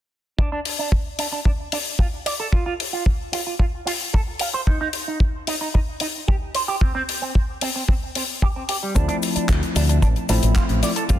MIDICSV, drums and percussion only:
0, 0, Header, 1, 2, 480
1, 0, Start_track
1, 0, Key_signature, -1, "minor"
1, 0, Tempo, 535714
1, 345, Time_signature, 4, 2, 24, 8
1, 10027, End_track
2, 0, Start_track
2, 0, Title_t, "Drums"
2, 345, Note_on_c, 9, 36, 96
2, 435, Note_off_c, 9, 36, 0
2, 586, Note_on_c, 9, 46, 98
2, 675, Note_off_c, 9, 46, 0
2, 824, Note_on_c, 9, 36, 106
2, 914, Note_off_c, 9, 36, 0
2, 1064, Note_on_c, 9, 46, 99
2, 1153, Note_off_c, 9, 46, 0
2, 1303, Note_on_c, 9, 36, 92
2, 1392, Note_off_c, 9, 36, 0
2, 1542, Note_on_c, 9, 46, 98
2, 1632, Note_off_c, 9, 46, 0
2, 1782, Note_on_c, 9, 36, 107
2, 1872, Note_off_c, 9, 36, 0
2, 2026, Note_on_c, 9, 46, 91
2, 2116, Note_off_c, 9, 46, 0
2, 2263, Note_on_c, 9, 36, 96
2, 2352, Note_off_c, 9, 36, 0
2, 2509, Note_on_c, 9, 46, 94
2, 2599, Note_off_c, 9, 46, 0
2, 2743, Note_on_c, 9, 36, 106
2, 2832, Note_off_c, 9, 36, 0
2, 2985, Note_on_c, 9, 46, 103
2, 3075, Note_off_c, 9, 46, 0
2, 3221, Note_on_c, 9, 36, 100
2, 3311, Note_off_c, 9, 36, 0
2, 3469, Note_on_c, 9, 46, 96
2, 3559, Note_off_c, 9, 46, 0
2, 3711, Note_on_c, 9, 36, 106
2, 3800, Note_off_c, 9, 36, 0
2, 3938, Note_on_c, 9, 46, 106
2, 4027, Note_off_c, 9, 46, 0
2, 4185, Note_on_c, 9, 36, 102
2, 4274, Note_off_c, 9, 36, 0
2, 4418, Note_on_c, 9, 46, 94
2, 4508, Note_off_c, 9, 46, 0
2, 4661, Note_on_c, 9, 36, 101
2, 4750, Note_off_c, 9, 36, 0
2, 4903, Note_on_c, 9, 46, 100
2, 4993, Note_off_c, 9, 46, 0
2, 5151, Note_on_c, 9, 36, 99
2, 5240, Note_off_c, 9, 36, 0
2, 5376, Note_on_c, 9, 46, 100
2, 5466, Note_off_c, 9, 46, 0
2, 5630, Note_on_c, 9, 36, 111
2, 5719, Note_off_c, 9, 36, 0
2, 5865, Note_on_c, 9, 46, 100
2, 5954, Note_off_c, 9, 46, 0
2, 6104, Note_on_c, 9, 36, 115
2, 6194, Note_off_c, 9, 36, 0
2, 6351, Note_on_c, 9, 46, 91
2, 6440, Note_off_c, 9, 46, 0
2, 6588, Note_on_c, 9, 36, 101
2, 6678, Note_off_c, 9, 36, 0
2, 6822, Note_on_c, 9, 46, 101
2, 6912, Note_off_c, 9, 46, 0
2, 7065, Note_on_c, 9, 36, 106
2, 7155, Note_off_c, 9, 36, 0
2, 7306, Note_on_c, 9, 46, 98
2, 7395, Note_off_c, 9, 46, 0
2, 7547, Note_on_c, 9, 36, 99
2, 7636, Note_off_c, 9, 36, 0
2, 7784, Note_on_c, 9, 46, 104
2, 7874, Note_off_c, 9, 46, 0
2, 8021, Note_on_c, 9, 69, 46
2, 8028, Note_on_c, 9, 36, 100
2, 8028, Note_on_c, 9, 42, 61
2, 8111, Note_off_c, 9, 69, 0
2, 8118, Note_off_c, 9, 36, 0
2, 8118, Note_off_c, 9, 42, 0
2, 8142, Note_on_c, 9, 42, 43
2, 8232, Note_off_c, 9, 42, 0
2, 8265, Note_on_c, 9, 69, 80
2, 8270, Note_on_c, 9, 46, 99
2, 8355, Note_off_c, 9, 69, 0
2, 8360, Note_off_c, 9, 46, 0
2, 8385, Note_on_c, 9, 42, 59
2, 8388, Note_on_c, 9, 69, 34
2, 8475, Note_off_c, 9, 42, 0
2, 8478, Note_off_c, 9, 69, 0
2, 8501, Note_on_c, 9, 69, 47
2, 8504, Note_on_c, 9, 36, 104
2, 8504, Note_on_c, 9, 39, 94
2, 8505, Note_on_c, 9, 42, 53
2, 8591, Note_off_c, 9, 69, 0
2, 8593, Note_off_c, 9, 36, 0
2, 8593, Note_off_c, 9, 39, 0
2, 8595, Note_off_c, 9, 42, 0
2, 8627, Note_on_c, 9, 42, 44
2, 8717, Note_off_c, 9, 42, 0
2, 8744, Note_on_c, 9, 46, 95
2, 8745, Note_on_c, 9, 69, 84
2, 8834, Note_off_c, 9, 46, 0
2, 8835, Note_off_c, 9, 69, 0
2, 8864, Note_on_c, 9, 42, 55
2, 8872, Note_on_c, 9, 69, 36
2, 8954, Note_off_c, 9, 42, 0
2, 8962, Note_off_c, 9, 69, 0
2, 8982, Note_on_c, 9, 36, 104
2, 8983, Note_on_c, 9, 69, 47
2, 8987, Note_on_c, 9, 42, 52
2, 9071, Note_off_c, 9, 36, 0
2, 9072, Note_off_c, 9, 69, 0
2, 9077, Note_off_c, 9, 42, 0
2, 9104, Note_on_c, 9, 42, 38
2, 9194, Note_off_c, 9, 42, 0
2, 9220, Note_on_c, 9, 46, 102
2, 9220, Note_on_c, 9, 69, 82
2, 9310, Note_off_c, 9, 46, 0
2, 9310, Note_off_c, 9, 69, 0
2, 9343, Note_on_c, 9, 42, 64
2, 9346, Note_on_c, 9, 69, 35
2, 9432, Note_off_c, 9, 42, 0
2, 9436, Note_off_c, 9, 69, 0
2, 9459, Note_on_c, 9, 39, 97
2, 9461, Note_on_c, 9, 42, 58
2, 9463, Note_on_c, 9, 36, 108
2, 9463, Note_on_c, 9, 69, 48
2, 9548, Note_off_c, 9, 39, 0
2, 9551, Note_off_c, 9, 42, 0
2, 9553, Note_off_c, 9, 36, 0
2, 9553, Note_off_c, 9, 69, 0
2, 9580, Note_on_c, 9, 42, 40
2, 9670, Note_off_c, 9, 42, 0
2, 9701, Note_on_c, 9, 46, 92
2, 9706, Note_on_c, 9, 69, 86
2, 9791, Note_off_c, 9, 46, 0
2, 9796, Note_off_c, 9, 69, 0
2, 9821, Note_on_c, 9, 42, 61
2, 9827, Note_on_c, 9, 69, 32
2, 9910, Note_off_c, 9, 42, 0
2, 9917, Note_off_c, 9, 69, 0
2, 9937, Note_on_c, 9, 42, 62
2, 9944, Note_on_c, 9, 69, 44
2, 9945, Note_on_c, 9, 36, 98
2, 10027, Note_off_c, 9, 36, 0
2, 10027, Note_off_c, 9, 42, 0
2, 10027, Note_off_c, 9, 69, 0
2, 10027, End_track
0, 0, End_of_file